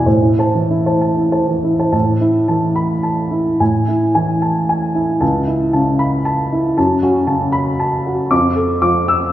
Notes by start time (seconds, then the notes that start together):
0.06 A2 C5
0.22 E4
0.39 C5 A5
0.55 E3
0.71 E4
0.86 C5 A5
1.02 A5
1.17 E4
1.32 C5 A5
1.48 E3
1.64 E4
1.79 C5 A5
1.92 A2 A5
2.21 E4
2.48 E3 A5
2.76 B5
3.03 A5
3.31 E4
3.60 A2 G#5
3.88 E4
4.15 E3 G#5
4.42 A5
4.69 G#5
4.95 E4
5.21 C#2 A5
5.47 E4
5.73 C#3 A5
5.99 B5
6.25 A5
6.53 E4
6.77 F#2 A5
7.03 C#4 F#4
7.27 C#3 A5
7.52 B5
7.80 A5
8.06 F#4
8.31 F2 D6
8.56 A4
8.82 F3 D6
9.08 E6